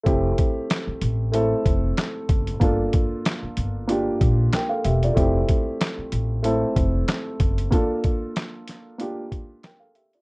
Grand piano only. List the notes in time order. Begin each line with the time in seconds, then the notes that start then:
0.03 A3 C4 E4 G4
1.32 A3 C4 E4 A4
2.60 A#3 D4 F4 A4
3.88 A#3 D4 F4 G4
4.54 A#4 G5
4.69 A4 F5
4.85 G4 E5
5.04 F4 D5
5.14 A3 C4 E4 G4
6.43 A3 C4 E4 A4
7.70 A#3 D4 F4 A4
8.98 A#3 D4 F4 G4
9.65 A#4 G5
9.80 A4 F5
9.95 G4 E5
10.15 F4 D5